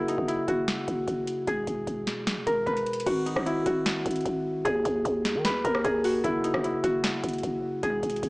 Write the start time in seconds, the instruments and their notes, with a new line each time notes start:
Already playing: 808-style bass F#1, harp E4 F#4 G#4 A#4
0.08 harp D#4, closed hi-hat
0.18 808-style bass F#1, kick
0.28 harp E4, closed hi-hat
0.48 808-style bass F#1, harp F#4, kick, closed hi-hat
0.68 snare, closed hi-hat
0.88 808-style bass F#1, kick, closed hi-hat
1.08 808-style bass F#1, kick, closed hi-hat
1.27 closed hi-hat
1.47 808-style bass E1, harp G#4, kick, closed hi-hat
1.67 808-style bass E1, kick, closed hi-hat
1.87 808-style bass E1, kick, closed hi-hat
2.07 snare, closed hi-hat
2.27 808-style bass B1, snare, closed hi-hat
2.37 808-style bass E1
2.47 808-style bass E1, harp A#4, kick, closed hi-hat
2.66 808-style bass E1, harp B4, kick, closed hi-hat
2.77 closed hi-hat
2.86 closed hi-hat, open hi-hat
2.93 closed hi-hat
3.00 closed hi-hat
3.06 808-style bass G#1, harp F#4, kick, closed hi-hat, crash
3.26 harp D#4, closed hi-hat
3.36 808-style bass G#1, kick, cross-stick
3.46 harp E4, closed hi-hat
3.66 808-style bass G#1, harp F#4, kick, closed hi-hat
3.86 snare, closed hi-hat
4.06 808-style bass G#1, kick, closed hi-hat
4.11 closed hi-hat
4.16 closed hi-hat
4.21 closed hi-hat
4.25 808-style bass G#1, kick, closed hi-hat
4.65 808-style bass D#2, harp G#4, kick, closed hi-hat
4.85 808-style bass D#2, kick, closed hi-hat
5.05 808-style bass D#2, kick, closed hi-hat
5.25 snare, closed hi-hat
5.35 808-style bass D#3
5.45 harp B4, snare, closed hi-hat
5.50 808-style bass D#2
5.64 808-style bass D#2, harp A#4, kick, closed hi-hat
5.75 cross-stick
5.84 808-style bass D#2, harp G#4, kick, closed hi-hat
6.04 harp F#4, open hi-hat
6.24 808-style bass F#1, harp E4, kick, closed hi-hat
6.44 harp D#4, closed hi-hat
6.54 808-style bass F#1, kick, cross-stick
6.64 harp E4, closed hi-hat
6.84 808-style bass F#1, harp F#4, kick, closed hi-hat
7.04 snare, closed hi-hat
7.24 808-style bass F#1, kick, closed hi-hat
7.29 closed hi-hat
7.33 closed hi-hat
7.38 closed hi-hat
7.43 808-style bass F#1, kick, closed hi-hat
7.83 808-style bass E1, harp G#4, kick, closed hi-hat
8.03 808-style bass E1, kick, closed hi-hat
8.10 closed hi-hat
8.16 closed hi-hat
8.23 808-style bass E1, kick, closed hi-hat